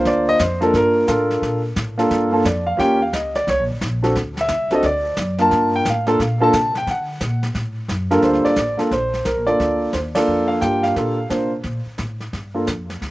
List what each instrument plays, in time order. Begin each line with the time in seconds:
Already playing: grand piano A#3 D4 F4 C5
0.05 upright bass D2, grand piano D5, brush sweep, kick, snare
0.29 grand piano D#5
0.39 upright bass F2, grand piano C5, kick, snare, hi-hat pedal
0.61 grand piano A#3 D4 F4 A4 A#4, snare
0.73 upright bass G2, grand piano A#4, brush sweep, kick, snare
1.07 upright bass A2, grand piano D4 F4 A4 A#4, kick, snare, hi-hat pedal
1.31 snare
1.42 upright bass A#2, brush sweep, kick, snare
1.76 upright bass A2, kick, snare, hi-hat pedal
1.98 grand piano A#3 D4 F4 A4, snare
2.10 upright bass G2, brush sweep, kick, snare
2.32 grand piano A#3 D4 F4 A4
2.44 upright bass F2, grand piano D5, kick, snare, hi-hat pedal
2.67 grand piano F5
2.77 upright bass D#2, grand piano A#3 C#4 F4 G4 G5, brush sweep, kick, snare
3.02 grand piano F5
3.13 upright bass C#2, grand piano D#5, kick, snare, hi-hat pedal
3.35 grand piano D5, snare
3.47 upright bass C2, grand piano C#5, brush sweep, kick, snare
3.59 upright bass A#1
3.71 upright bass G1
3.81 upright bass A#1, kick, snare, hi-hat pedal
4.03 grand piano C4 D4 F#4 A4, snare
4.15 upright bass D2, brush sweep, kick, snare
4.37 grand piano E5, snare
4.48 upright bass C2, kick, snare, hi-hat pedal
4.71 grand piano C4 D4 F#4 A4, snare
4.75 grand piano D#5
4.83 upright bass D2, grand piano D5, brush sweep, kick, snare
5.16 upright bass F#2, kick, snare, hi-hat pedal
5.38 grand piano A#3 D4 F4 A#4 A5, snare
5.51 upright bass G2, brush sweep, kick, snare
5.76 grand piano G5
5.85 upright bass A2, kick, snare, hi-hat pedal
5.90 grand piano F5
6.07 grand piano A#3 D4 F4 A4, snare
6.19 upright bass A#2, brush sweep, kick, snare
6.40 grand piano A#3 D4 F4 A4 A5
6.53 upright bass C3, kick, snare, hi-hat pedal
6.75 grand piano G5, snare
6.87 upright bass D3, grand piano F#5, brush sweep, kick, snare
7.20 upright bass A#2, kick, snare, hi-hat pedal
7.43 snare
7.54 upright bass A2, brush sweep, kick, snare
7.88 upright bass F#2, kick, snare, hi-hat pedal
8.11 grand piano G2 A#3 D4 F4 A4 A#4, snare
8.22 upright bass D2, grand piano C5, brush sweep, kick, snare
8.33 snare
8.45 grand piano D5, muted upright bass stroke, snare
8.56 upright bass A1, kick, snare, hi-hat pedal
8.78 grand piano A#3 D4 F4 A4, muted upright bass stroke, snare
8.91 upright bass A#1, grand piano C5, brush sweep, kick, snare
9.14 snare
9.25 upright bass C2, grand piano A#4, kick, snare, hi-hat pedal
9.37 upright bass A#1
9.46 upright bass G1, grand piano A#3 D4 F4 A4 D5, snare
9.59 upright bass D2, brush sweep, kick, snare
9.93 upright bass D#2, grand piano C5, kick, snare, hi-hat pedal
10.15 grand piano A#3 D4 F4 A4 D5, snare, ride
10.27 upright bass F2, brush sweep
10.48 grand piano F5
10.61 upright bass G2, grand piano A#3 D4 F4 G4 G5, kick, snare, hi-hat pedal
10.83 grand piano F5, snare
10.96 upright bass A#2, grand piano A#3 D4 F4 A4, brush sweep, kick, snare
11.30 upright bass C3, grand piano A#3 D4 F4 C5, kick, snare, hi-hat pedal
11.63 upright bass A#2, brush sweep, kick, snare
11.86 muted upright bass stroke
11.98 upright bass A2, kick, snare, hi-hat pedal
12.20 snare
12.33 upright bass G2, brush sweep, kick, snare
12.54 grand piano A#3 D4 F4 A4
12.67 upright bass F2, kick, snare, hi-hat pedal
12.90 snare
13.01 upright bass D2, brush sweep, kick, snare